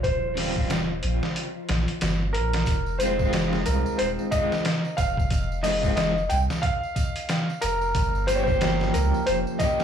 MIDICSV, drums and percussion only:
0, 0, Header, 1, 2, 480
1, 0, Start_track
1, 0, Key_signature, -4, "minor"
1, 0, Tempo, 659341
1, 31, Time_signature, 4, 2, 24, 8
1, 7163, End_track
2, 0, Start_track
2, 0, Title_t, "Drums"
2, 28, Note_on_c, 9, 36, 100
2, 30, Note_on_c, 9, 42, 85
2, 101, Note_off_c, 9, 36, 0
2, 103, Note_off_c, 9, 42, 0
2, 270, Note_on_c, 9, 46, 81
2, 275, Note_on_c, 9, 38, 45
2, 342, Note_off_c, 9, 46, 0
2, 347, Note_off_c, 9, 38, 0
2, 410, Note_on_c, 9, 36, 96
2, 483, Note_off_c, 9, 36, 0
2, 509, Note_on_c, 9, 42, 88
2, 511, Note_on_c, 9, 54, 65
2, 515, Note_on_c, 9, 38, 122
2, 582, Note_off_c, 9, 42, 0
2, 584, Note_off_c, 9, 54, 0
2, 587, Note_off_c, 9, 38, 0
2, 748, Note_on_c, 9, 42, 65
2, 821, Note_off_c, 9, 42, 0
2, 895, Note_on_c, 9, 38, 54
2, 968, Note_off_c, 9, 38, 0
2, 990, Note_on_c, 9, 42, 85
2, 1063, Note_off_c, 9, 42, 0
2, 1227, Note_on_c, 9, 42, 70
2, 1232, Note_on_c, 9, 38, 97
2, 1300, Note_off_c, 9, 42, 0
2, 1305, Note_off_c, 9, 38, 0
2, 1369, Note_on_c, 9, 42, 45
2, 1442, Note_off_c, 9, 42, 0
2, 1464, Note_on_c, 9, 42, 78
2, 1466, Note_on_c, 9, 54, 63
2, 1469, Note_on_c, 9, 38, 114
2, 1537, Note_off_c, 9, 42, 0
2, 1539, Note_off_c, 9, 54, 0
2, 1542, Note_off_c, 9, 38, 0
2, 1707, Note_on_c, 9, 42, 70
2, 1780, Note_off_c, 9, 42, 0
2, 1845, Note_on_c, 9, 42, 70
2, 1850, Note_on_c, 9, 38, 101
2, 1918, Note_off_c, 9, 42, 0
2, 1923, Note_off_c, 9, 38, 0
2, 1937, Note_on_c, 9, 54, 55
2, 1944, Note_on_c, 9, 42, 84
2, 1945, Note_on_c, 9, 36, 104
2, 2010, Note_off_c, 9, 54, 0
2, 2017, Note_off_c, 9, 36, 0
2, 2017, Note_off_c, 9, 42, 0
2, 2085, Note_on_c, 9, 54, 24
2, 2157, Note_off_c, 9, 54, 0
2, 2183, Note_on_c, 9, 42, 68
2, 2188, Note_on_c, 9, 54, 92
2, 2256, Note_off_c, 9, 42, 0
2, 2261, Note_off_c, 9, 54, 0
2, 2323, Note_on_c, 9, 54, 41
2, 2326, Note_on_c, 9, 36, 91
2, 2396, Note_off_c, 9, 54, 0
2, 2399, Note_off_c, 9, 36, 0
2, 2423, Note_on_c, 9, 42, 88
2, 2428, Note_on_c, 9, 38, 121
2, 2429, Note_on_c, 9, 54, 50
2, 2496, Note_off_c, 9, 42, 0
2, 2501, Note_off_c, 9, 38, 0
2, 2502, Note_off_c, 9, 54, 0
2, 2566, Note_on_c, 9, 54, 26
2, 2569, Note_on_c, 9, 38, 52
2, 2639, Note_off_c, 9, 54, 0
2, 2641, Note_off_c, 9, 38, 0
2, 2662, Note_on_c, 9, 42, 61
2, 2664, Note_on_c, 9, 54, 97
2, 2735, Note_off_c, 9, 42, 0
2, 2737, Note_off_c, 9, 54, 0
2, 2809, Note_on_c, 9, 54, 39
2, 2882, Note_off_c, 9, 54, 0
2, 2903, Note_on_c, 9, 42, 88
2, 2908, Note_on_c, 9, 54, 50
2, 2976, Note_off_c, 9, 42, 0
2, 2981, Note_off_c, 9, 54, 0
2, 3048, Note_on_c, 9, 54, 27
2, 3121, Note_off_c, 9, 54, 0
2, 3144, Note_on_c, 9, 42, 67
2, 3145, Note_on_c, 9, 36, 83
2, 3145, Note_on_c, 9, 54, 85
2, 3217, Note_off_c, 9, 42, 0
2, 3217, Note_off_c, 9, 54, 0
2, 3218, Note_off_c, 9, 36, 0
2, 3291, Note_on_c, 9, 54, 39
2, 3292, Note_on_c, 9, 38, 49
2, 3364, Note_off_c, 9, 54, 0
2, 3365, Note_off_c, 9, 38, 0
2, 3384, Note_on_c, 9, 42, 83
2, 3389, Note_on_c, 9, 38, 113
2, 3396, Note_on_c, 9, 54, 45
2, 3457, Note_off_c, 9, 42, 0
2, 3462, Note_off_c, 9, 38, 0
2, 3468, Note_off_c, 9, 54, 0
2, 3528, Note_on_c, 9, 54, 24
2, 3601, Note_off_c, 9, 54, 0
2, 3624, Note_on_c, 9, 54, 77
2, 3625, Note_on_c, 9, 36, 93
2, 3625, Note_on_c, 9, 42, 70
2, 3697, Note_off_c, 9, 42, 0
2, 3697, Note_off_c, 9, 54, 0
2, 3698, Note_off_c, 9, 36, 0
2, 3767, Note_on_c, 9, 36, 92
2, 3781, Note_on_c, 9, 54, 40
2, 3840, Note_off_c, 9, 36, 0
2, 3854, Note_off_c, 9, 54, 0
2, 3862, Note_on_c, 9, 42, 82
2, 3864, Note_on_c, 9, 36, 107
2, 3874, Note_on_c, 9, 54, 56
2, 3935, Note_off_c, 9, 42, 0
2, 3937, Note_off_c, 9, 36, 0
2, 3946, Note_off_c, 9, 54, 0
2, 4016, Note_on_c, 9, 54, 27
2, 4089, Note_off_c, 9, 54, 0
2, 4104, Note_on_c, 9, 46, 79
2, 4107, Note_on_c, 9, 54, 91
2, 4109, Note_on_c, 9, 38, 44
2, 4177, Note_off_c, 9, 46, 0
2, 4180, Note_off_c, 9, 54, 0
2, 4182, Note_off_c, 9, 38, 0
2, 4247, Note_on_c, 9, 36, 91
2, 4252, Note_on_c, 9, 54, 42
2, 4320, Note_off_c, 9, 36, 0
2, 4325, Note_off_c, 9, 54, 0
2, 4345, Note_on_c, 9, 42, 91
2, 4350, Note_on_c, 9, 38, 126
2, 4350, Note_on_c, 9, 54, 51
2, 4418, Note_off_c, 9, 42, 0
2, 4422, Note_off_c, 9, 54, 0
2, 4423, Note_off_c, 9, 38, 0
2, 4498, Note_on_c, 9, 54, 26
2, 4570, Note_off_c, 9, 54, 0
2, 4584, Note_on_c, 9, 42, 61
2, 4590, Note_on_c, 9, 54, 88
2, 4657, Note_off_c, 9, 42, 0
2, 4662, Note_off_c, 9, 54, 0
2, 4734, Note_on_c, 9, 38, 56
2, 4734, Note_on_c, 9, 54, 46
2, 4806, Note_off_c, 9, 38, 0
2, 4806, Note_off_c, 9, 54, 0
2, 4826, Note_on_c, 9, 36, 114
2, 4826, Note_on_c, 9, 42, 92
2, 4826, Note_on_c, 9, 54, 51
2, 4898, Note_off_c, 9, 42, 0
2, 4899, Note_off_c, 9, 36, 0
2, 4899, Note_off_c, 9, 54, 0
2, 4975, Note_on_c, 9, 54, 24
2, 5048, Note_off_c, 9, 54, 0
2, 5067, Note_on_c, 9, 36, 87
2, 5068, Note_on_c, 9, 42, 60
2, 5068, Note_on_c, 9, 54, 86
2, 5140, Note_off_c, 9, 36, 0
2, 5141, Note_off_c, 9, 42, 0
2, 5141, Note_off_c, 9, 54, 0
2, 5210, Note_on_c, 9, 42, 49
2, 5212, Note_on_c, 9, 54, 39
2, 5283, Note_off_c, 9, 42, 0
2, 5285, Note_off_c, 9, 54, 0
2, 5306, Note_on_c, 9, 42, 83
2, 5311, Note_on_c, 9, 38, 109
2, 5315, Note_on_c, 9, 54, 57
2, 5378, Note_off_c, 9, 42, 0
2, 5383, Note_off_c, 9, 38, 0
2, 5388, Note_off_c, 9, 54, 0
2, 5457, Note_on_c, 9, 54, 25
2, 5530, Note_off_c, 9, 54, 0
2, 5546, Note_on_c, 9, 42, 71
2, 5546, Note_on_c, 9, 54, 100
2, 5619, Note_off_c, 9, 42, 0
2, 5619, Note_off_c, 9, 54, 0
2, 5688, Note_on_c, 9, 54, 35
2, 5761, Note_off_c, 9, 54, 0
2, 5785, Note_on_c, 9, 42, 88
2, 5786, Note_on_c, 9, 36, 107
2, 5792, Note_on_c, 9, 54, 56
2, 5858, Note_off_c, 9, 42, 0
2, 5859, Note_off_c, 9, 36, 0
2, 5865, Note_off_c, 9, 54, 0
2, 5932, Note_on_c, 9, 54, 27
2, 6005, Note_off_c, 9, 54, 0
2, 6026, Note_on_c, 9, 42, 74
2, 6035, Note_on_c, 9, 54, 93
2, 6099, Note_off_c, 9, 42, 0
2, 6108, Note_off_c, 9, 54, 0
2, 6169, Note_on_c, 9, 36, 97
2, 6171, Note_on_c, 9, 54, 42
2, 6242, Note_off_c, 9, 36, 0
2, 6244, Note_off_c, 9, 54, 0
2, 6267, Note_on_c, 9, 42, 98
2, 6270, Note_on_c, 9, 54, 55
2, 6272, Note_on_c, 9, 38, 127
2, 6340, Note_off_c, 9, 42, 0
2, 6342, Note_off_c, 9, 54, 0
2, 6345, Note_off_c, 9, 38, 0
2, 6408, Note_on_c, 9, 54, 30
2, 6415, Note_on_c, 9, 38, 52
2, 6481, Note_off_c, 9, 54, 0
2, 6487, Note_off_c, 9, 38, 0
2, 6509, Note_on_c, 9, 42, 64
2, 6514, Note_on_c, 9, 54, 97
2, 6582, Note_off_c, 9, 42, 0
2, 6587, Note_off_c, 9, 54, 0
2, 6655, Note_on_c, 9, 54, 39
2, 6728, Note_off_c, 9, 54, 0
2, 6746, Note_on_c, 9, 42, 92
2, 6755, Note_on_c, 9, 54, 53
2, 6819, Note_off_c, 9, 42, 0
2, 6828, Note_off_c, 9, 54, 0
2, 6894, Note_on_c, 9, 54, 28
2, 6967, Note_off_c, 9, 54, 0
2, 6986, Note_on_c, 9, 42, 65
2, 6987, Note_on_c, 9, 36, 86
2, 6988, Note_on_c, 9, 54, 89
2, 7058, Note_off_c, 9, 42, 0
2, 7060, Note_off_c, 9, 36, 0
2, 7061, Note_off_c, 9, 54, 0
2, 7130, Note_on_c, 9, 54, 36
2, 7135, Note_on_c, 9, 38, 48
2, 7163, Note_off_c, 9, 38, 0
2, 7163, Note_off_c, 9, 54, 0
2, 7163, End_track
0, 0, End_of_file